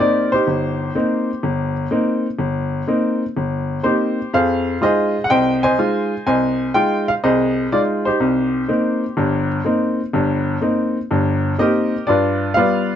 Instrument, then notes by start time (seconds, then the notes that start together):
upright piano
Already playing: G4 A#4
0.00 A#3 C4 D#4 D5
0.32 D#4 G4 C5
0.47 G1
0.95 A#3 C4 D#4
1.43 G1
1.91 A#3 C4 D#4
2.39 G1
2.88 A#3 C4 D#4
3.37 G1
3.83 A#3 C4 D#4 G4 C5
4.33 F2 G#4 C5 F5
4.81 G#3 D#4 F4 G#4 C5 D#5
5.24 F#5
5.30 C2 C5 D#5 G5
5.63 C5 D#5 G#5
5.78 G#3 D#4 F4
6.27 C2 C5 D#5 G#5
6.74 G#3 D#4 F4 G5
7.08 F5
7.24 C2 G#4 C5 D#5
7.72 G#3 D#4 F4 D5
8.05 D#4 G4 C5
8.20 C2
8.68 A#3 C4 D#4
9.17 G1 G2
9.65 A#3 C4 D#4
10.13 G1 G2
10.62 A#3 C4 D#4
11.11 G1 G2
11.59 A#3 C4 D#4 G4 A#4 D#5
12.07 G2 F4 B4 D5
12.54 G3 B3 F4 B4 F5
12.58 D5